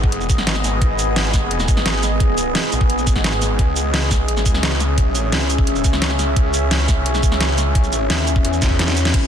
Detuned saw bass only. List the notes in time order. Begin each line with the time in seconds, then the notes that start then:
Already playing: G#1
0.30 G#1
0.64 G#1
0.82 G#1
1.68 G#1
2.72 A#1
3.07 G#1
3.59 C#2
4.46 C#2
5.32 C#2
5.84 C#2
6.19 C#2
6.36 C#2
6.96 C2
7.23 C#2
8.10 D#2
8.45 E2
9.14 G#1